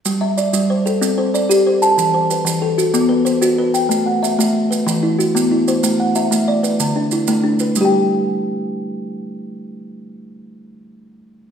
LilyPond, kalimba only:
<<
  \new Staff \with { instrumentName = "Kalimba" } { \time 12/8 \key g \major \tempo 4. = 125 r8 e''8 d''4 c''8 a'4 c''8 d''4 c''8 a''8~ | a''8 c''8 b'4 a'8 fis'4 b'8 c''4 b'8 g''8~ | g''8 fis''8 e''4. b'4 e'8 fis'4 e'8 c''8~ | c''8 fis''8 e''4 d''8 b'4 d'8 e'4 d'8 b'8~ |
b'8 r1 r4. | r1. | }
  \new Staff \with { instrumentName = "Kalimba" } { \time 12/8 \key g \major g4 r8 g4 r8 c'4 r8 g'4 r8 | e4 r8 e4 r8 b4 r8 fis'4 r8 | a4 r8 a4 r8 e4 r8 b4 r8 | a4 r8 a4 r8 d4 r8 a4 r8 |
<g g' g''>1.~ | <g g' g''>1. | }
>>